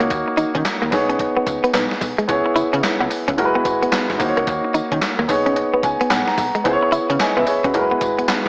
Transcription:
Already playing: A#3 D#4 F#4 C#5
0.00 C#2 A#3, closed hi-hat
0.10 D#2, kick, closed hi-hat, tambourine, cowbell
0.28 muted clean electric guitar stroke
0.37 D#3 D#4, closed hi-hat, tambourine
0.55 D#3 C#4, kick, closed hi-hat
0.65 snare, clap, closed hi-hat, tambourine, cowbell
0.82 D#2 A#3
0.91 B1 B3 D#4 G#4 C#5, muted clean electric guitar stroke, kick, snare, open hi-hat, tambourine, cowbell
1.09 C#4, closed hi-hat
1.19 kick, closed hi-hat, cowbell
1.37 C#2 B3
1.47 C#2, muted clean electric guitar stroke, kick, closed hi-hat, tambourine
1.64 B3, closed hi-hat
1.74 B1 B3, snare, clap, closed hi-hat, tambourine, cowbell
1.91 snare
2.01 B1, muted clean electric guitar stroke, kick, open hi-hat, tambourine
2.18 G#3, closed hi-hat
2.28 C#2 B3 E4 G#4 C#5, kick, closed hi-hat, tambourine, cowbell
2.46 muted clean electric guitar stroke
2.56 C#3 E4, closed hi-hat, tambourine
2.73 C#3 C#4, closed hi-hat
2.83 snare, clap, closed hi-hat, tambourine, cowbell
3.00 C#2 B3
3.10 muted clean electric guitar stroke, open hi-hat, tambourine, cowbell
3.28 C#2 C#4, kick, closed hi-hat
3.37 F#1 G#3 E4 F#4 A#4, closed hi-hat, cowbell
3.45 B4
3.55 B3
3.65 G#1, muted clean electric guitar stroke, kick, closed hi-hat, tambourine
3.83 B3, closed hi-hat
3.92 B3, snare, clap, closed hi-hat, tambourine, cowbell
4.10 G#1, snare
4.19 D#2 A#3 D#4 F#4 C5, muted clean electric guitar stroke, kick, open hi-hat, tambourine
4.28 C#5
4.37 C#2 A#3, closed hi-hat
4.47 D#2, kick, closed hi-hat, tambourine, cowbell
4.64 muted clean electric guitar stroke
4.74 D#3 D#4, closed hi-hat, tambourine
4.92 D#3 C#4, kick, closed hi-hat
5.01 snare, clap, closed hi-hat, tambourine, cowbell
5.19 D#2 A#3
5.28 B1 B3 D#4 G#4 C#5, muted clean electric guitar stroke, kick, open hi-hat, tambourine, cowbell
5.46 C#4, closed hi-hat
5.56 closed hi-hat, cowbell
5.73 C#2 B3
5.83 C#2 G#5, muted clean electric guitar stroke, kick, closed hi-hat, tambourine
6.01 B3, closed hi-hat
6.10 B1 B3 F#5, snare, clap, closed hi-hat, tambourine, cowbell
6.28 A#5, snare
6.38 B1, muted clean electric guitar stroke, kick, open hi-hat, tambourine
6.55 G#3, closed hi-hat
6.64 C#2 B3 E4 G#4 C5, kick, closed hi-hat, tambourine, cowbell
6.73 C#5
6.83 muted clean electric guitar stroke
6.92 C#3 E4, closed hi-hat, tambourine
7.10 C#3 C#4, closed hi-hat
7.20 D#5 G#5, snare, clap, closed hi-hat, tambourine, cowbell
7.37 C#2 B3 B4 E5
7.46 G#4 C#5, muted clean electric guitar stroke, open hi-hat, tambourine, cowbell
7.64 C#2 C#4 F#4 B4, kick, closed hi-hat
7.74 F#1 G#3 E4 F#4 A#4, closed hi-hat, cowbell
7.81 B4
7.91 B3
8.01 G#1, muted clean electric guitar stroke, kick, closed hi-hat, tambourine
8.19 B3, closed hi-hat
8.28 B3, snare, clap, closed hi-hat, tambourine, cowbell

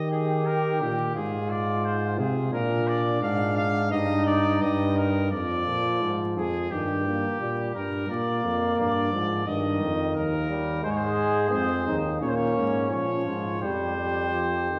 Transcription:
Already playing: D#3 G4
0.11 G#4
0.46 A#4
0.81 A#2 G4
1.15 G#2 F4 G#4
1.50 D5
1.84 C5
2.18 C3 G#4
2.52 A#2 D4 A#4
2.88 D5
3.21 G#2 F5
3.57 F5
3.91 G2 D#4 D#5
4.26 D5
4.61 G2 D#5
4.97 A#4
5.31 F2 F3 D5
5.66 A#2
6.01 G#2
6.36 F2 G#4
6.71 G2 D#3 G4
7.06 A#3
7.40 A#2 G3
7.75 G2 A#4
8.09 A#2 A#3 D5
8.43 F2
8.78 G2 D5
9.12 G#2 F3
9.46 G2 D#3 D#5
9.81 F2
10.15 D#2 A#4
10.49 G3
10.83 G#2 G#3 G#4 C5
10.90 C#5
10.97 C5
11.52 F2 C4 C5
11.87 D#2 D#4
12.21 A#2 A#3 C#4 C#5
12.29 C5
12.35 C#5
12.57 G#2
12.91 A#2 F3 C#5
13.26 G#2 F4
13.62 F2 G3 G4 C5
13.98 G3
14.33 F3
14.70 D#3

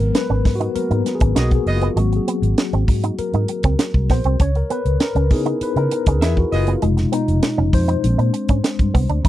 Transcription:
Already playing: F#3 G#3 B3 A#4
0.00 G#1, closed hi-hat
0.15 B4, snare, closed hi-hat
0.30 G#1 C#4
0.45 G#2, muted clean electric guitar stroke, kick, snare, open hi-hat
0.56 F#4
0.60 D#4, closed hi-hat
0.75 F#3 A#3 B3 A#4, muted fingered electric bass stroke, closed hi-hat
0.91 G#2 D#4, closed hi-hat
1.06 muted clean electric guitar stroke, snare, closed hi-hat
1.15 G#4
1.20 G#1 C#4, kick, closed hi-hat
1.35 B1 B3 D#4 F#4 G#4 D#5, snare, closed hi-hat
1.51 muted clean electric guitar stroke, kick, closed hi-hat
1.55 G#4
1.66 F#1 B3 G#4 D#5, open hi-hat
1.76 F4
1.82 B3, closed hi-hat
1.96 G#1 F#3 G#3 A#3 C4 F#4, closed hi-hat
2.13 G#4, muted clean electric guitar stroke, closed hi-hat
2.28 B3, closed hi-hat
2.42 G#1, closed hi-hat
2.58 snare, closed hi-hat
2.73 G#1 C4, closed hi-hat
2.88 G#2, muted clean electric guitar stroke, kick, open hi-hat
3.04 D#4, closed hi-hat
3.19 A#4, muted fingered electric bass stroke, closed hi-hat
3.34 G#2 D#4, closed hi-hat
3.48 muted clean electric guitar stroke, closed hi-hat
3.63 C#2 C4, kick, closed hi-hat
3.79 muted clean electric guitar stroke, snare, closed hi-hat
3.94 C2, kick
4.09 A#1 B3 C5, kick, snare, open hi-hat
4.24 C2 C4, closed hi-hat
4.40 C#2 C#4 C#5, kick, closed hi-hat
4.55 A#4, muted clean electric guitar stroke, closed hi-hat
4.70 B3 B4, closed hi-hat
4.85 C#2, closed hi-hat
5.00 A#4, snare, closed hi-hat
5.15 C#2 C#4, closed hi-hat
5.31 C#3 B3 D#4 E4 G#4, muted clean electric guitar stroke, kick, open hi-hat
5.46 D#4, closed hi-hat
5.61 B4, muted fingered electric bass stroke, closed hi-hat
5.76 C#3 D#4 A#4, closed hi-hat
5.91 muted clean electric guitar stroke, closed hi-hat
6.06 C#2 C#4 G#4, kick, closed hi-hat
6.21 E2 B3 D#4 E4 G#4 E5, snare, closed hi-hat
6.37 F#4, muted clean electric guitar stroke, kick
6.52 F#1 B3 F4 G#4 D#5, snare, open hi-hat
6.67 B3, closed hi-hat
6.82 F1 B2 G#3 D#4, closed hi-hat
6.97 muted clean electric guitar stroke, snare, closed hi-hat
7.12 B3 D#4, closed hi-hat
7.28 F1, closed hi-hat
7.43 snare, closed hi-hat
7.58 F1 C#4
7.73 F2 C5, muted clean electric guitar stroke, kick, open hi-hat
7.88 D#4, closed hi-hat
8.03 A#1 G#3 C4 D4, closed hi-hat
8.18 A#2 D4, closed hi-hat
8.34 muted clean electric guitar stroke, closed hi-hat
8.49 G#2 C#4, kick, closed hi-hat
8.64 muted clean electric guitar stroke, snare, closed hi-hat
8.79 G2, kick, closed hi-hat
8.94 C2 B3, kick, open hi-hat
9.09 D2 D4, closed hi-hat
9.24 D#2 D#3 F#3 A#3 C#4 D#4 F#4, kick, closed hi-hat

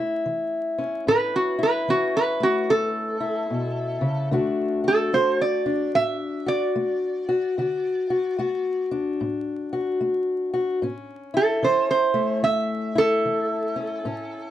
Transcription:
Already playing: E2 A3 C#4 E4
0.26 E3
0.78 C#4
1.07 A2 C#4 B4
1.36 F#4
1.59 E4
1.63 B4
1.88 E3 C#4 F#4
2.17 B4
2.40 A3 F#4
2.69 E2 A4
3.20 E4
3.50 B2
4.01 C#3
4.31 D3 A3 D4 F#4
4.84 F#4 A4
5.13 A3 F#4 C5
5.41 D5
5.66 D4
5.95 A2 E5
6.46 F#4 D5
6.76 A3
7.29 F#4
7.58 D3 F#4
8.10 F#4
8.38 A3 F#4
8.91 D4
9.21 A2
9.73 F#4
10.01 A3
10.54 F#4
10.82 A2 C#4
11.34 E4 A4
11.62 E3 C#4 C5
11.91 C5
12.14 A3
12.43 E2 E5
12.95 E4 A4
13.25 E3
13.76 C#4
14.05 A2 C#4

